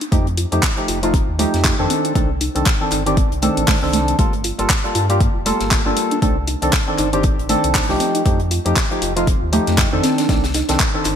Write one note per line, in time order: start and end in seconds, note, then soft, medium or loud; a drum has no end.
0.01 0.05 D#4 medium
0.01 closed hi-hat medium
0.01 closed hi-hat soft
0.12 0.46 F2 loud
0.12 0.26 F3 medium
0.12 0.27 A3 medium
0.12 0.19 A3 medium
0.12 0.27 D#4 medium
0.12 0.27 G4 medium
0.12 kick loud
0.12 closed hi-hat medium
0.27 closed hi-hat soft
0.37 0.45 F4 medium
0.37 closed hi-hat medium
0.37 open hi-hat loud
0.52 0.60 F2 medium
0.52 0.63 F3 medium
0.52 0.63 A3 medium
0.52 0.63 D#4 medium
0.52 0.63 G4 medium
0.52 closed hi-hat medium
0.63 kick loud
0.63 snare loud
0.63 clap loud
0.63 closed hi-hat medium
0.77 0.99 F3 medium
0.77 0.99 A3 medium
0.77 1.00 D#4 medium
0.77 1.00 G4 medium
0.77 closed hi-hat soft
0.88 1.22 F1 loud
0.88 0.93 F4 medium
0.88 closed hi-hat medium
0.88 open hi-hat loud
1.03 1.14 F3 medium
1.03 1.14 A3 medium
1.03 1.14 D#4 medium
1.03 1.14 F4 loud
1.03 closed hi-hat medium
1.14 1.25 C4 medium
1.14 kick loud
1.14 closed hi-hat medium
1.28 1.46 D#2 loud
1.39 1.76 F3 medium
1.39 1.76 A3 medium
1.39 1.44 A3 loud
1.39 1.76 D#4 medium
1.39 1.76 G4 loud
1.39 closed hi-hat medium
1.39 open hi-hat loud
1.54 1.71 F2 medium
1.54 snare medium
1.54 closed hi-hat medium
1.64 kick loud
1.64 snare loud
1.64 clap loud
1.64 closed hi-hat medium
1.64 open hi-hat medium
1.79 1.87 F2 loud
1.79 2.13 D#3 loud
1.79 2.13 C4 medium
1.79 2.13 D4 medium
1.79 1.87 D#4 medium
1.79 2.13 A4 loud
1.90 1.94 C4 medium
1.90 closed hi-hat medium
1.90 open hi-hat loud
2.05 2.08 D4 medium
2.05 closed hi-hat medium
2.15 2.49 C2 loud
2.15 2.30 D#3 medium
2.15 2.23 A3 loud
2.15 2.30 C4 medium
2.15 2.30 D4 medium
2.15 2.30 A4 medium
2.15 kick loud
2.15 closed hi-hat medium
2.41 2.48 D#4 medium
2.41 closed hi-hat medium
2.41 open hi-hat loud
2.55 2.63 C2 medium
2.55 2.66 D#3 medium
2.55 2.66 C4 medium
2.55 2.66 D4 medium
2.55 2.66 A4 medium
2.55 closed hi-hat medium
2.55 closed hi-hat soft
2.65 kick loud
2.65 snare loud
2.65 clap loud
2.65 closed hi-hat medium
2.65 closed hi-hat soft
2.81 3.03 D#3 medium
2.81 3.03 C4 medium
2.81 3.03 D4 medium
2.81 3.03 A4 medium
2.91 3.25 G1 loud
2.91 2.96 D#4 medium
2.91 clap soft
2.91 closed hi-hat medium
2.91 open hi-hat loud
3.06 3.17 D#3 medium
3.06 3.17 C4 medium
3.06 3.17 D4 medium
3.06 3.17 G4 loud
3.06 closed hi-hat medium
3.17 3.28 C4 medium
3.17 kick loud
3.17 closed hi-hat medium
3.32 3.49 C2 medium
3.32 closed hi-hat soft
3.42 3.79 D#3 medium
3.42 3.54 A3 loud
3.42 3.79 C4 medium
3.42 3.79 D4 medium
3.42 3.79 A4 loud
3.42 closed hi-hat medium
3.42 open hi-hat loud
3.57 3.65 A1 loud
3.57 3.63 D4 medium
3.57 closed hi-hat medium
3.68 3.75 A3 medium
3.68 kick loud
3.68 snare loud
3.68 clap loud
3.68 closed hi-hat soft
3.68 open hi-hat medium
3.82 4.14 C2 medium
3.82 4.16 D#3 loud
3.82 4.16 C4 medium
3.82 4.16 D4 medium
3.82 4.16 A4 loud
3.82 snare soft
3.93 4.01 A3 medium
3.93 snare soft
3.93 closed hi-hat medium
3.93 open hi-hat loud
4.08 closed hi-hat soft
4.08 closed hi-hat medium
4.18 4.52 G1 loud
4.18 4.33 G3 medium
4.18 4.26 A3 loud
4.18 4.33 A#3 medium
4.18 4.34 F4 medium
4.18 4.34 A4 medium
4.18 kick loud
4.18 closed hi-hat medium
4.18 closed hi-hat soft
4.33 closed hi-hat soft
4.44 4.52 F4 medium
4.44 closed hi-hat medium
4.44 open hi-hat loud
4.59 4.67 G1 medium
4.59 4.69 G3 medium
4.59 4.70 A#3 medium
4.59 4.70 F4 medium
4.59 4.70 A4 medium
4.59 closed hi-hat medium
4.69 kick loud
4.69 snare loud
4.69 clap loud
4.69 closed hi-hat medium
4.84 5.06 G3 medium
4.84 5.06 A#3 medium
4.84 5.06 F4 medium
4.84 5.07 A4 medium
4.84 closed hi-hat soft
4.95 5.29 G2 loud
4.95 5.00 F4 medium
4.95 closed hi-hat medium
4.95 open hi-hat loud
5.09 5.20 G3 medium
5.09 5.20 A#3 medium
5.09 5.21 F4 medium
5.09 5.21 G4 loud
5.09 closed hi-hat medium
5.20 5.32 A#3 medium
5.20 kick loud
5.20 closed hi-hat medium
5.35 5.52 F1 loud
5.46 5.82 G3 medium
5.46 5.50 A3 loud
5.46 5.82 A#3 medium
5.46 5.83 F4 medium
5.46 5.83 A4 loud
5.46 closed hi-hat medium
5.46 open hi-hat loud
5.60 5.78 G1 loud
5.60 snare medium
5.60 closed hi-hat medium
5.71 kick loud
5.71 snare loud
5.71 clap loud
5.71 closed hi-hat medium
5.71 open hi-hat medium
5.86 5.94 G1 loud
5.86 6.19 G3 loud
5.86 6.20 A#3 medium
5.86 5.94 D4 medium
5.86 6.20 F4 medium
5.86 6.20 A4 loud
5.96 6.01 A#3 medium
5.96 closed hi-hat medium
5.96 open hi-hat loud
6.11 6.15 D4 medium
6.11 closed hi-hat medium
6.22 6.56 C2 loud
6.22 6.37 D#3 medium
6.22 6.30 A3 loud
6.22 6.37 C4 medium
6.22 6.37 D4 medium
6.22 6.37 A4 medium
6.22 kick loud
6.22 closed hi-hat medium
6.47 6.55 D#4 medium
6.47 closed hi-hat medium
6.47 open hi-hat loud
6.62 6.70 C2 medium
6.62 6.73 D#3 medium
6.62 6.73 C4 medium
6.62 6.73 D4 medium
6.62 6.73 A4 medium
6.62 closed hi-hat medium
6.62 closed hi-hat soft
6.73 kick loud
6.73 snare loud
6.73 clap loud
6.73 closed hi-hat medium
6.87 7.09 D#3 medium
6.87 7.10 C4 medium
6.87 7.10 D4 medium
6.87 7.10 A4 medium
6.98 7.32 G1 loud
6.98 7.03 D#4 medium
6.98 clap soft
6.98 closed hi-hat medium
6.98 open hi-hat loud
7.13 7.24 D#3 medium
7.13 7.24 C4 medium
7.13 7.24 D4 medium
7.13 7.24 G4 loud
7.13 closed hi-hat medium
7.23 7.35 C4 medium
7.23 kick loud
7.23 closed hi-hat medium
7.39 7.56 A1 loud
7.39 closed hi-hat soft
7.49 7.86 D#3 loud
7.49 7.54 A3 loud
7.49 7.86 C4 medium
7.49 7.86 D4 medium
7.49 7.86 A4 loud
7.49 closed hi-hat medium
7.49 open hi-hat loud
7.64 7.81 C2 loud
7.64 closed hi-hat medium
7.75 kick loud
7.75 snare loud
7.75 clap loud
7.75 closed hi-hat medium
7.75 open hi-hat medium
7.89 7.97 C2 loud
7.89 8.23 F3 loud
7.89 8.23 A3 medium
7.89 7.98 D4 medium
7.89 8.23 D#4 medium
7.89 8.23 G4 loud
7.89 snare soft
8.00 8.05 C4 medium
8.00 snare soft
8.00 closed hi-hat medium
8.00 open hi-hat loud
8.15 8.18 D#4 medium
8.15 closed hi-hat medium
8.15 closed hi-hat soft
8.25 8.59 F2 medium
8.25 8.40 F3 medium
8.25 8.40 A3 medium
8.25 8.33 A3 medium
8.25 8.40 D#4 medium
8.25 8.40 G4 medium
8.25 kick loud
8.25 closed hi-hat medium
8.40 closed hi-hat soft
8.51 8.58 F4 medium
8.51 closed hi-hat medium
8.51 open hi-hat loud
8.65 8.73 F2 medium
8.65 8.76 F3 medium
8.65 8.76 A3 medium
8.65 8.77 D#4 medium
8.65 8.77 G4 medium
8.65 closed hi-hat medium
8.76 kick loud
8.76 snare loud
8.76 clap loud
8.76 closed hi-hat medium
8.91 9.13 F3 medium
8.91 9.13 A3 medium
8.91 9.13 D#4 medium
8.91 9.13 G4 medium
8.91 closed hi-hat soft
9.02 9.35 F1 loud
9.02 9.06 F4 medium
9.02 closed hi-hat medium
9.02 open hi-hat loud
9.16 9.27 F3 medium
9.16 9.27 A3 medium
9.16 9.27 D#4 medium
9.16 9.28 F4 loud
9.16 closed hi-hat medium
9.27 9.38 C4 medium
9.27 kick loud
9.27 closed hi-hat medium
9.42 9.59 D#2 loud
9.52 9.89 F3 loud
9.52 9.89 A3 medium
9.52 9.57 A3 loud
9.52 9.89 D#4 medium
9.52 9.90 G4 loud
9.52 closed hi-hat medium
9.52 open hi-hat loud
9.67 9.85 F2 loud
9.67 snare medium
9.67 closed hi-hat medium
9.77 kick loud
9.77 snare loud
9.77 clap loud
9.77 closed hi-hat loud
9.77 open hi-hat medium
9.92 10.01 F2 loud
9.92 10.26 D#3 loud
9.92 10.26 C4 medium
9.92 10.26 D4 medium
9.92 10.01 D#4 medium
9.92 10.27 A4 loud
10.03 10.08 C4 medium
10.03 snare loud
10.03 closed hi-hat medium
10.03 open hi-hat loud
10.18 10.22 D4 medium
10.18 snare loud
10.18 closed hi-hat medium
10.29 10.62 C2 loud
10.29 10.43 D#3 medium
10.29 10.36 A3 loud
10.29 10.44 C4 medium
10.29 10.44 D4 medium
10.29 10.44 A4 medium
10.29 kick loud
10.29 snare loud
10.29 closed hi-hat medium
10.44 snare loud
10.44 closed hi-hat medium
10.54 10.62 D#4 medium
10.54 snare loud
10.54 closed hi-hat medium
10.54 open hi-hat loud
10.69 10.77 C2 medium
10.69 10.80 D#3 medium
10.69 10.80 C4 medium
10.69 10.80 D4 medium
10.69 10.80 A4 medium
10.69 snare loud
10.69 closed hi-hat medium
10.79 kick loud
10.79 snare loud
10.79 clap loud
10.79 closed hi-hat medium
10.94 11.16 D#3 medium
10.94 11.16 C4 medium
10.94 11.16 D4 medium
10.94 11.16 A4 medium
11.04 11.16 G1 loud
11.04 11.10 D#4 medium
11.04 clap soft
11.04 closed hi-hat medium
11.04 open hi-hat loud